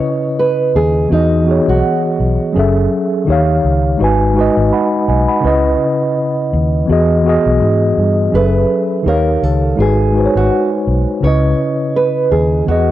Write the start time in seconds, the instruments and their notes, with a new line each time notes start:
Already playing: tine electric piano C#3 C#4 E4 B4 D#5, nylon-string guitar C#5
0.39 nylon-string guitar B4
0.75 fingered electric bass D#2, nylon-string guitar G#4
1.08 fingered electric bass E2, tine electric piano E3 B3 F#4
1.12 nylon-string guitar D#4, tine electric piano G#4 D#5
1.44 tine electric piano E3 B3 F#4
1.49 tine electric piano G#4 C#5
1.68 fingered electric bass B1, nylon-string guitar F#4
2.20 fingered electric bass B1
2.52 fingered electric bass F#1, tine electric piano F#3 C#4 G#4
2.58 tine electric piano A4 E5
3.25 fingered electric bass D#2, tine electric piano D#3 D#4 G4
3.30 tine electric piano C#5 F5
3.64 fingered electric bass C#2
3.97 fingered electric bass G#1, tine electric piano G#3 D#4 F#4
4.02 tine electric piano B4 G#5
4.34 tine electric piano G#3 D#4 F#4
4.39 tine electric piano B4 D#5
4.57 fingered electric bass G#1
4.73 tine electric piano F#5 B5
5.08 fingered electric bass B1, tine electric piano D#5 G#5
5.28 tine electric piano F#5 B5
5.41 fingered electric bass C#2, tine electric piano C#3 C#4 E4
5.45 tine electric piano B4 D#5
6.53 fingered electric bass D#2
6.86 fingered electric bass E2, tine electric piano E3 B3 F#4
6.91 tine electric piano G#4 D#5
7.22 tine electric piano E3 B3 F#4
7.28 tine electric piano G#4 D#5
7.46 fingered electric bass B1
7.62 fingered electric bass G#2
7.98 fingered electric bass G2
8.30 fingered electric bass F#1, tine electric piano F#3 C#4 G#4
8.35 tine electric piano A4 E5, nylon-string guitar B4
9.02 fingered electric bass D#2, tine electric piano D#3 D#4 G4
9.08 nylon-string guitar A#4, tine electric piano C#5 F5
9.42 fingered electric bass C#2, nylon-string guitar A4
9.75 fingered electric bass G#1, tine electric piano G#3 D#4 F#4
9.80 nylon-string guitar G#4, tine electric piano B4 G#5
10.12 tine electric piano G#3 D#4 F#4
10.17 tine electric piano B4 C5
10.25 tine electric piano C#5
10.35 fingered electric bass G#1, nylon-string guitar F#4
10.87 fingered electric bass B1
11.20 fingered electric bass C#2, tine electric piano C#3 C#4 E4, nylon-string guitar C#5
11.26 tine electric piano B4 D#5
11.96 nylon-string guitar B4
12.32 fingered electric bass D#2, nylon-string guitar G#4
12.65 fingered electric bass E2, tine electric piano E3 B3 F#4, nylon-string guitar F#4
12.70 tine electric piano G#4 D#5